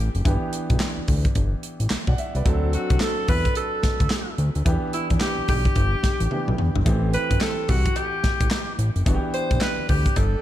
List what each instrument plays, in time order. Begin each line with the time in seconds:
Already playing: grand piano E3 A3 C4 G4
0.15 analog synth bass F#1, closed hi-hat
0.25 analog synth bass G1, grand piano E3 B3 D4 G4, kick, closed hi-hat
0.53 closed hi-hat
0.70 analog synth bass B1, kick, closed hi-hat
0.80 snare, clap, closed hi-hat
0.97 analog synth bass D2
1.08 analog synth bass D2, kick, open hi-hat
1.25 kick, closed hi-hat
1.35 analog synth bass G1, kick, closed hi-hat
1.63 closed hi-hat
1.80 analog synth bass A1, closed hi-hat
1.90 analog synth bass B1, snare, clap, closed hi-hat
2.07 analog synth bass B1, grand piano D5 F#5, kick
2.18 grand piano E5, closed hi-hat
2.35 analog synth bass C2, grand piano B4 D5, closed hi-hat
2.45 analog synth bass D2, grand piano F#3 C4 D4 A4, kick, closed hi-hat
2.73 alto saxophone F#4, closed hi-hat
2.90 analog synth bass C2, kick, closed hi-hat
3.00 alto saxophone A4, snare, clap, closed hi-hat
3.28 analog synth bass E2, alto saxophone B4, kick, open hi-hat
3.45 kick, closed hi-hat
3.55 alto saxophone A4, closed hi-hat
3.83 analog synth bass D2, kick, snare, closed hi-hat
4.00 analog synth bass D2, kick, closed hi-hat
4.10 snare, clap, closed hi-hat
4.38 analog synth bass D2, closed hi-hat
4.55 analog synth bass D2, closed hi-hat
4.65 analog synth bass E2, grand piano E3 B3 D4 G4, kick, closed hi-hat
4.93 alto saxophone E4, closed hi-hat
5.10 analog synth bass E2, kick, closed hi-hat
5.20 alto saxophone G4, snare, clap, closed hi-hat
5.38 analog synth bass B1
5.48 analog synth bass B1, alto saxophone G4, kick, open hi-hat
5.65 kick, closed hi-hat
5.76 analog synth bass G1, kick, closed hi-hat
6.03 kick, snare, closed hi-hat
6.20 analog synth bass A1, closed hi-hat
6.31 grand piano E3 B3 D4 G4, high tom
6.48 analog synth bass B1, mid tom
6.58 analog synth bass E2, mid tom
6.76 analog synth bass G1, floor tom
6.85 analog synth bass A1, grand piano E3 A3 C4 G4, kick, closed hi-hat, cowbell
7.13 alto saxophone B4, closed hi-hat
7.31 analog synth bass G1, kick, closed hi-hat
7.41 alto saxophone A4, snare, clap, closed hi-hat, cowbell
7.69 analog synth bass C2, alto saxophone F#4, kick, open hi-hat
7.85 kick, closed hi-hat
7.96 alto saxophone G4, closed hi-hat, cowbell
8.23 analog synth bass A1, kick, snare, closed hi-hat
8.41 analog synth bass A1, kick, closed hi-hat
8.51 snare, clap, closed hi-hat, cowbell
8.79 analog synth bass A1, closed hi-hat
8.96 analog synth bass F#1, closed hi-hat
9.06 analog synth bass G1, grand piano E3 B3 D4 F#4, kick, closed hi-hat, cowbell
9.15 grand piano G4
9.34 alto saxophone C5, closed hi-hat
9.51 analog synth bass B1, kick, closed hi-hat
9.61 alto saxophone B4, snare, clap, closed hi-hat, cowbell
9.78 analog synth bass D2
9.89 analog synth bass D2, alto saxophone G4, kick, open hi-hat
10.06 kick, closed hi-hat
10.16 analog synth bass G1, alto saxophone A4, kick, closed hi-hat, cowbell